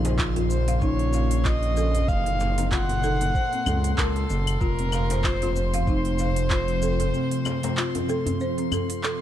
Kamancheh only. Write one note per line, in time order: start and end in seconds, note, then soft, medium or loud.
0.50 0.80 C5 medium
0.82 1.47 C#5 loud
1.45 2.09 D#5 loud
2.08 2.72 F5 loud
2.71 3.98 F#5 loud
3.98 4.61 A4 loud
4.60 5.26 A#4 loud
5.24 5.55 C5 loud
5.56 8.99 C5 loud